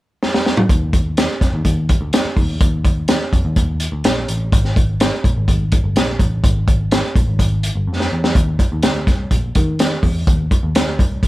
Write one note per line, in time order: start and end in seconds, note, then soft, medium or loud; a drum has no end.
0.23 snare medium
0.34 snare medium
0.46 snare medium
0.57 mid tom medium
0.69 1.26 D#2 medium
0.69 kick loud
0.69 closed hi-hat medium
0.93 kick medium
0.93 closed hi-hat medium
1.17 snare loud
1.17 closed hi-hat medium
1.41 1.51 F2 medium
1.41 kick medium
1.41 snare soft
1.41 closed hi-hat medium
1.54 1.64 D#2 medium
1.65 1.95 D#2 medium
1.65 kick medium
1.65 closed hi-hat medium
1.89 kick medium
1.89 closed hi-hat medium
2.01 2.11 D2 medium
2.13 snare loud
2.13 closed hi-hat medium
2.25 muted picked electric bass stroke soft
2.37 2.57 D#2 medium
2.37 kick medium
2.37 open hi-hat soft
2.61 3.18 D#2 medium
2.61 kick loud
2.61 closed hi-hat medium
2.85 kick medium
2.85 closed hi-hat medium
3.08 snare loud
3.08 closed hi-hat medium
3.33 3.43 F2 medium
3.33 kick medium
3.33 closed hi-hat medium
3.45 3.55 D#2 medium
3.56 3.86 D#2 medium
3.56 kick medium
3.56 closed hi-hat medium
3.80 closed hi-hat medium
3.92 4.02 D2 medium
4.04 4.25 A#1 medium
4.04 snare loud
4.04 closed hi-hat medium
4.28 4.48 A1 medium
4.28 closed hi-hat medium
4.52 5.09 G#1 loud
4.52 kick loud
4.52 closed hi-hat medium
4.64 snare soft
4.76 kick medium
4.76 closed hi-hat medium
5.00 snare loud
5.00 closed hi-hat medium
5.24 5.34 A#1 medium
5.24 kick medium
5.24 closed hi-hat medium
5.36 5.46 G#1 medium
5.48 5.78 G#1 medium
5.48 kick medium
5.48 closed hi-hat medium
5.72 kick medium
5.72 closed hi-hat medium
5.84 5.94 G1 medium
5.96 6.16 A#1 medium
5.96 snare loud
5.96 closed hi-hat medium
6.19 6.40 A1 medium
6.19 kick medium
6.19 closed hi-hat medium
6.44 7.01 G#1 loud
6.44 kick loud
6.44 closed hi-hat medium
6.68 kick medium
6.68 closed hi-hat medium
6.91 snare loud
6.91 closed hi-hat medium
7.16 7.26 A#1 medium
7.16 kick medium
7.16 closed hi-hat medium
7.28 7.38 G#1 medium
7.39 7.69 G#1 medium
7.39 kick medium
7.39 closed hi-hat medium
7.63 closed hi-hat medium
7.75 7.85 G1 medium
7.87 8.07 F2 medium
8.00 snare medium
8.12 8.32 E2 medium
8.24 snare medium
8.35 8.55 D#2 medium
8.35 kick loud
8.35 closed hi-hat medium
8.59 kick medium
8.59 closed hi-hat medium
8.72 8.82 D#2 medium
8.83 9.04 D2 medium
8.83 snare loud
8.83 closed hi-hat medium
9.07 9.27 C2 medium
9.07 kick medium
9.07 snare soft
9.07 closed hi-hat medium
9.31 9.51 A#1 medium
9.31 kick medium
9.31 closed hi-hat medium
9.55 9.96 D#3 medium
9.55 kick medium
9.55 closed hi-hat medium
9.79 snare loud
9.79 closed hi-hat medium
10.03 10.23 E2 medium
10.03 kick medium
10.03 open hi-hat soft
10.27 10.47 D#2 medium
10.27 kick loud
10.27 closed hi-hat medium
10.51 kick medium
10.51 closed hi-hat medium
10.63 10.73 D#2 medium
10.75 10.95 D2 medium
10.75 snare loud
10.75 closed hi-hat medium
10.99 11.19 C2 medium
10.99 kick medium
10.99 closed hi-hat medium
11.23 11.28 A#1 medium
11.23 kick medium
11.23 closed hi-hat medium